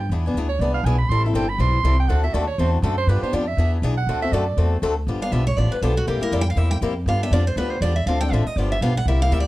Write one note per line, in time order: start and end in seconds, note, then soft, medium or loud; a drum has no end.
0.00 0.11 G5 medium
0.09 0.33 E2 medium
0.09 0.24 E3 medium
0.09 0.25 B3 medium
0.09 0.25 D4 medium
0.09 0.25 G#4 medium
0.26 0.36 B3 medium
0.26 0.36 D4 medium
0.26 0.35 G#4 medium
0.34 0.59 D2 medium
0.34 0.46 E3 medium
0.34 0.47 B3 medium
0.34 0.47 D4 medium
0.38 0.47 G#4 medium
0.49 0.62 C#5 medium
0.59 0.83 C2 medium
0.59 0.79 E3 medium
0.59 0.79 B3 medium
0.59 0.79 D4 medium
0.59 0.79 G#4 medium
0.59 0.74 D5 medium
0.74 0.87 F5 loud
0.83 1.08 B1 medium
0.83 0.96 E3 medium
0.83 0.96 B3 medium
0.83 0.96 D4 medium
0.83 0.96 G#4 medium
0.83 0.98 G#5 medium
0.98 1.10 B5 medium
1.09 1.33 A1 medium
1.09 1.24 E3 medium
1.09 1.24 G3 medium
1.09 1.24 C4 medium
1.09 1.24 E4 medium
1.09 1.24 A4 medium
1.09 1.23 C6 loud
1.25 1.34 C4 soft
1.25 1.34 E4 soft
1.25 1.34 A4 medium
1.25 1.37 E5 medium
1.34 1.58 G1 medium
1.34 1.45 E3 medium
1.34 1.45 G3 medium
1.34 1.45 C4 medium
1.34 1.45 E4 loud
1.34 1.45 A4 medium
1.34 1.51 G5 medium
1.49 1.61 B5 loud
1.58 1.83 B1 medium
1.58 1.77 E3 medium
1.58 1.78 G3 medium
1.58 1.78 C4 medium
1.58 1.78 E4 medium
1.58 1.78 A4 medium
1.58 1.99 C6 loud
1.83 2.08 C2 medium
1.83 1.95 E3 medium
1.83 1.95 G3 medium
1.83 1.95 C4 medium
1.83 1.95 E4 loud
1.83 1.95 A4 loud
2.00 2.10 G5 medium
2.09 2.33 D2 medium
2.09 2.23 D3 medium
2.09 2.23 A3 medium
2.09 2.23 C4 medium
2.09 2.23 F#4 medium
2.09 2.22 A4 medium
2.09 2.23 F#5 loud
2.23 2.33 C4 soft
2.23 2.34 F#4 soft
2.23 2.33 A4 medium
2.23 2.35 E5 medium
2.34 2.58 D#2 medium
2.34 2.44 D3 medium
2.34 2.44 A3 medium
2.34 2.45 C4 loud
2.34 2.45 F#4 medium
2.34 2.45 A4 medium
2.34 2.47 D5 medium
2.47 2.60 C#5 medium
2.58 2.82 E2 medium
2.58 2.77 D3 medium
2.58 2.77 A3 medium
2.58 2.77 C4 medium
2.58 2.77 F#4 medium
2.58 2.77 A4 medium
2.58 2.72 C5 medium
2.73 2.85 E4 soft
2.82 3.06 F#2 loud
2.82 2.94 D3 medium
2.82 2.94 A3 loud
2.82 2.94 C4 medium
2.82 2.94 F#4 loud
2.82 2.97 A4 medium
2.82 2.94 A4 loud
2.98 3.10 C5 loud
3.07 3.21 G2 medium
3.07 3.22 D3 medium
3.07 3.22 F3 medium
3.07 3.23 B3 medium
3.07 3.22 D4 medium
3.07 3.22 G4 medium
3.07 3.22 B4 medium
3.22 3.32 B3 soft
3.22 3.32 D4 medium
3.22 3.32 G4 medium
3.22 3.35 C5 loud
3.22 muted upright bass stroke soft
3.33 3.56 F2 medium
3.33 3.44 D3 medium
3.33 3.44 F3 medium
3.33 3.44 B3 loud
3.33 3.44 D4 medium
3.33 3.44 G4 loud
3.33 3.49 D5 medium
3.48 3.73 E5 loud
3.57 3.81 E2 medium
3.57 3.77 E3 medium
3.57 3.77 B3 medium
3.57 3.77 D4 medium
3.57 3.77 G#4 medium
3.82 4.06 B1 medium
3.82 3.94 E3 medium
3.82 3.94 B3 medium
3.82 3.94 D4 loud
3.82 3.94 G#4 loud
3.97 4.21 F#5 medium
4.07 4.31 D2 medium
4.07 4.22 D3 medium
4.07 4.22 A3 medium
4.07 4.22 C4 medium
4.07 4.22 F#4 medium
4.07 4.21 A4 medium
4.22 4.33 C4 soft
4.22 4.33 F#4 medium
4.22 4.33 A4 medium
4.22 4.34 E5 loud
4.32 4.56 F#2 medium
4.32 4.43 D3 loud
4.32 4.43 A3 medium
4.32 4.44 C4 loud
4.32 4.44 F#4 loud
4.32 4.44 A4 loud
4.32 4.72 D5 medium
4.57 4.82 E2 medium
4.57 4.76 D3 medium
4.57 4.76 A3 medium
4.57 4.76 C4 medium
4.57 4.76 F#4 medium
4.57 4.76 A4 medium
4.82 5.06 D2 loud
4.82 4.93 D3 medium
4.82 4.93 A3 loud
4.82 4.93 C4 loud
4.82 4.93 F#4 medium
4.82 4.93 A4 loud
5.07 5.31 G1 medium
5.07 5.22 D3 medium
5.07 5.22 F3 medium
5.07 5.21 B3 medium
5.07 5.21 D4 medium
5.07 5.20 G4 medium
5.21 5.31 B3 soft
5.21 5.32 D4 soft
5.21 5.32 G4 medium
5.21 5.33 F5 medium
5.32 5.56 B1 medium
5.32 5.43 D3 medium
5.32 5.43 F3 medium
5.32 5.43 B3 medium
5.32 5.43 D4 medium
5.32 5.43 G4 medium
5.32 5.46 E5 medium
5.47 5.58 C#5 medium
5.57 5.70 A1 medium
5.57 5.76 D3 medium
5.57 5.76 F3 medium
5.57 5.76 B3 medium
5.57 5.76 D4 medium
5.57 5.76 G4 medium
5.57 5.71 D5 medium
5.71 5.82 B4 medium
5.71 muted upright bass stroke soft
5.82 6.06 B1 medium
5.82 5.93 D3 medium
5.82 5.93 F3 medium
5.82 5.93 B3 medium
5.82 5.93 D4 medium
5.82 5.93 G4 loud
5.82 5.96 A4 medium
5.97 6.07 F#4 medium
6.07 6.20 C2 medium
6.07 6.21 C3 medium
6.07 6.21 G3 medium
6.07 6.21 A#3 medium
6.07 6.20 E4 medium
6.07 6.21 G4 medium
6.07 6.20 G4 medium
6.21 6.31 A#3 soft
6.21 6.32 E4 soft
6.21 6.32 G4 medium
6.21 6.33 A#4 medium
6.21 muted upright bass stroke soft
6.31 6.55 F2 medium
6.31 6.43 C3 medium
6.31 6.43 G3 medium
6.31 6.43 A#3 medium
6.31 6.43 E4 medium
6.31 6.43 G4 loud
6.31 6.41 D5 medium
6.41 6.49 G5 loud
6.50 6.58 F5 medium
6.56 6.81 E2 medium
6.56 6.75 C3 medium
6.56 6.75 G3 medium
6.56 6.75 A#3 medium
6.56 6.75 E4 medium
6.56 6.76 G4 medium
6.56 6.70 E5 medium
6.71 6.77 G5 medium
6.81 7.05 F2 medium
6.81 6.92 C3 medium
6.81 6.93 G3 medium
6.81 6.93 A#3 loud
6.81 6.93 E4 medium
6.81 6.93 G4 medium
7.06 7.31 G2 medium
7.06 7.21 D3 medium
7.06 7.21 F3 medium
7.06 7.21 B3 medium
7.06 7.21 D4 medium
7.06 7.21 G4 medium
7.06 7.22 F5 medium
7.23 7.32 B3 soft
7.23 7.32 D4 medium
7.23 7.32 G4 medium
7.23 7.33 E5 medium
7.31 7.55 F2 medium
7.31 7.42 D3 medium
7.31 7.43 F3 loud
7.31 7.43 B3 loud
7.31 7.43 D4 loud
7.31 7.43 G4 loud
7.31 7.46 D5 medium
7.47 7.57 C5 medium
7.56 7.80 D2 medium
7.56 7.75 D3 medium
7.56 7.75 F3 medium
7.56 7.75 B3 medium
7.56 7.75 D4 medium
7.56 7.75 G4 medium
7.56 7.71 B4 medium
7.71 7.81 C5 medium
7.81 8.05 E2 medium
7.81 7.92 D3 medium
7.81 7.93 F3 medium
7.81 7.92 B3 medium
7.81 7.93 D4 loud
7.81 7.93 G4 loud
7.81 7.96 D5 medium
7.96 8.06 E5 medium
8.06 8.30 D2 medium
8.06 8.21 D3 medium
8.06 8.21 F3 medium
8.06 8.21 C4 medium
8.06 8.21 D4 medium
8.06 8.21 A4 medium
8.06 8.20 F5 medium
8.21 8.32 C4 soft
8.21 8.32 D4 medium
8.21 8.32 A4 medium
8.21 8.32 G5 loud
8.31 8.44 A1 medium
8.31 8.43 D3 medium
8.31 8.43 F3 medium
8.31 8.43 C4 medium
8.31 8.43 D4 medium
8.31 8.43 A4 medium
8.31 8.47 E5 medium
8.46 8.58 D#5 medium
8.46 muted upright bass stroke soft
8.56 8.80 G1 medium
8.56 8.75 D3 medium
8.56 8.75 F3 medium
8.56 8.75 B3 medium
8.56 8.76 D4 medium
8.56 8.76 G4 medium
8.56 8.71 D5 medium
8.72 8.82 E5 medium
8.81 9.05 B1 medium
8.81 8.92 D3 medium
8.81 8.92 F3 medium
8.81 8.92 B3 medium
8.81 8.92 D4 medium
8.81 8.93 G4 medium
8.81 8.96 F5 medium
8.97 9.07 F#5 loud
9.05 9.30 C2 medium
9.05 9.21 C3 medium
9.05 9.21 G3 medium
9.05 9.21 A#3 medium
9.05 9.21 E4 medium
9.05 9.21 G4 medium
9.05 9.21 E5 medium
9.22 9.31 A#3 soft
9.22 9.31 E4 soft
9.22 9.31 G4 medium
9.22 9.33 F5 loud
9.31 9.47 D2 medium
9.31 9.41 C3 medium
9.31 9.42 G3 medium
9.31 9.42 A#3 medium
9.31 9.42 E4 loud
9.31 9.42 G4 loud
9.31 9.40 E5 medium
9.40 9.47 D5 medium